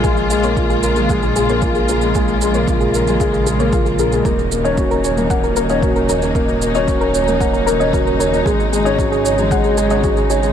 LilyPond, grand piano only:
\new Staff \with { instrumentName = "Grand piano" } { \time 4/4 \key bes \minor \tempo 4 = 114 aes16 r16 aes16 bes16 f'16 r16 bes'16 aes16 aes16 r16 aes16 bes16 f'16 r16 bes'16 aes16 | aes16 r16 aes16 bes16 f'16 r16 bes'16 aes16 aes16 r16 aes16 bes16 f'16 r16 bes'16 aes16 | bes16 r16 bes16 des'16 ges'16 r16 des''16 bes16 bes16 r16 bes16 des'16 ges'16 r16 des''16 bes16 | bes16 r16 bes16 des'16 ges'16 r16 des''16 bes16 bes16 r16 bes16 des'16 ges'16 r16 des''16 bes16 |
aes16 r16 aes16 des'16 ges'16 r16 des''16 aes16 aes16 r16 aes16 des'16 ges'16 r16 des''16 aes16 | }